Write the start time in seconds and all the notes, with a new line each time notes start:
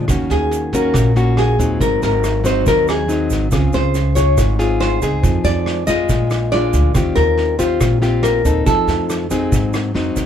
0.08 D#2 D#3 A#3 C#4 F#4, kick, cross-stick, snare, shaker
0.30 D#2 G#4, snare, shaker
0.51 snare, shaker
0.73 A#3 C#4 F#4 A#4, kick, snare, shaker
0.94 A#1 A#2, kick, cross-stick, snare, shaker
1.16 A#3 C#4 F#4, snare, shaker
1.37 G#4, cross-stick, snare
1.59 D#2 F#3 C4 D#4, kick, snare, shaker
1.80 G#1 G#2 A#4, kick, snare, shaker
2.02 G#1 A#4, snare, shaker
2.24 cross-stick, snare, shaker
2.44 F#3 C4 D#4 C5, kick, snare, shaker
2.66 D#2 D#3 A#4, kick, snare, shaker
2.87 G#4, cross-stick, snare, shaker
3.08 F#3 C4 D#4, snare, shaker
3.30 G#1, kick, snare, shaker
3.51 C#2 C#3 C4 F4 G#4, kick, cross-stick, snare, shaker
3.73 C#2 C5, snare, shaker
3.94 snare, shaker
4.15 F4 G#4 C#5, kick, snare, shaker
4.38 G#1 G#2, kick, cross-stick, snare, shaker
4.59 C4 F4 G#4, snare, shaker
4.80 C5, cross-stick, snare
5.02 C#2 C4 D#4 G#4, kick, snare, shaker
5.23 F2 F3, kick, snare, shaker
5.44 F2 D5, snare, shaker
5.66 cross-stick, snare
5.87 G#3 F4 D#5, kick, snare, shaker
6.09 A#1 A#2, kick, snare, shaker
6.30 cross-stick, snare, shaker
6.52 G#3 D4 F4 D5, snare
6.73 D2, kick, snare, shaker
6.95 D#2 D#3 C4 F4 G4, kick, cross-stick, snare, shaker
7.16 D#2 A#4, snare, shaker
7.37 snare
7.59 C4 F4 G4 C5, kick, snare, shaker
7.81 A#1 A#2, kick, cross-stick, snare, shaker
8.02 C4 F4 G4, snare, shaker
8.23 A#4, cross-stick, snare, shaker
8.45 D#2 C4 D#4 A4, kick, snare, shaker
8.66 F2 F3 A4, kick, snare, shaker
8.87 F2, snare, shaker
9.10 cross-stick, snare, shaker
9.30 F#3 C4 D#4 G#4, kick, snare, shaker
9.51 G#2, kick, snare, shaker
9.73 cross-stick, snare, shaker
9.94 F2 F#3 C4 D#4, snare
10.16 D#2, kick, snare, shaker